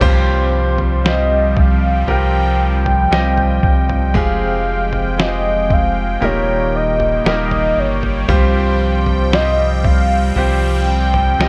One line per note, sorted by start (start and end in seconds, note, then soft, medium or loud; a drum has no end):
0.01 2.04 C2 loud
0.01 1.52 G2 medium
0.01 6.18 F3 medium
0.01 0.99 G3 medium
0.01 4.11 G3 medium
0.01 6.18 C4 medium
0.01 0.99 C4 medium
0.01 1.00 F4 medium
0.01 1.00 G4 medium
0.01 1.00 C5 loud
0.01 1.08 C5 loud
0.01 8.25 G5 medium
0.01 kick loud
0.01 floor tom loud
0.01 crash medium
0.78 floor tom medium
1.04 2.03 G3 medium
1.04 2.03 C4 medium
1.04 2.03 F4 medium
1.04 2.03 G4 medium
1.04 2.03 C5 medium
1.04 1.60 D#5 loud
1.04 snare loud
1.57 2.09 F5 medium
1.57 kick medium
1.57 floor tom medium
2.07 3.07 C2 loud
2.07 3.06 G3 medium
2.07 3.06 C4 medium
2.07 3.06 F4 medium
2.07 3.06 G4 medium
2.07 3.07 A#4 medium
2.07 4.12 G5 loud
2.07 floor tom medium
2.86 floor tom medium
3.11 3.60 C2 medium
3.11 4.10 G3 medium
3.11 4.10 C4 medium
3.11 4.10 F4 medium
3.11 4.10 G4 medium
3.11 4.10 D#5 medium
3.11 snare loud
3.37 floor tom medium
3.63 4.16 C2 medium
3.63 kick medium
3.89 floor tom medium
4.14 6.18 F1 loud
4.14 5.66 C3 medium
4.14 5.13 G#3 medium
4.14 6.20 G#3 medium
4.14 5.13 C4 medium
4.14 5.13 F4 medium
4.14 5.13 G4 medium
4.14 5.14 G#4 loud
4.14 5.22 F5 loud
4.14 kick loud
4.14 floor tom loud
4.93 floor tom medium
5.18 6.16 G#3 medium
5.18 6.17 C4 medium
5.18 6.17 F4 medium
5.18 6.17 G4 medium
5.18 6.17 G#4 medium
5.18 5.74 D#5 loud
5.18 snare loud
5.70 6.26 F5 loud
5.70 kick medium
5.70 floor tom medium
6.21 7.21 D#1 loud
6.21 7.73 A#2 medium
6.21 8.27 D#3 medium
6.21 7.20 G3 medium
6.21 11.48 G3 medium
6.21 7.20 A#3 medium
6.21 8.27 A#3 medium
6.21 7.20 D#4 medium
6.21 7.20 G4 medium
6.21 7.20 A#4 medium
6.21 6.75 C#5 medium
6.21 floor tom medium
6.76 7.23 D#5 medium
7.00 floor tom medium
7.25 7.73 D#1 loud
7.25 8.23 G3 medium
7.25 8.24 A#3 medium
7.25 8.24 D#4 medium
7.25 8.24 G4 medium
7.25 8.24 A#4 medium
7.25 7.81 D#5 loud
7.25 snare loud
7.51 floor tom medium
7.77 8.25 G1 medium
7.77 8.32 C#5 loud
8.03 floor tom medium
8.28 10.32 C2 medium
8.28 9.80 G2 medium
8.28 11.48 F3 medium
8.28 9.27 G3 medium
8.28 9.27 C4 medium
8.28 11.48 C4 medium
8.28 9.27 F4 medium
8.28 9.27 G4 medium
8.28 9.28 C5 loud
8.28 9.33 C5 loud
8.28 11.48 G5 loud
8.28 kick loud
8.28 floor tom loud
9.06 floor tom medium
9.32 10.31 G3 medium
9.32 10.31 C4 medium
9.32 10.31 F4 medium
9.32 10.31 G4 medium
9.32 10.31 C5 medium
9.32 9.82 D#5 loud
9.32 snare loud
9.84 10.33 F5 loud
9.84 kick medium
9.84 floor tom medium
10.36 11.35 C2 loud
10.36 11.34 G3 medium
10.36 11.34 C4 medium
10.36 11.35 F4 medium
10.36 11.35 G4 medium
10.36 11.35 C5 medium
10.36 11.48 G5 loud
10.36 floor tom medium
11.14 floor tom medium
11.39 11.48 C2 medium
11.39 11.48 G3 medium
11.39 11.48 C4 medium
11.39 11.48 F4 medium
11.39 11.48 G4 medium
11.39 11.48 D#5 medium
11.39 snare loud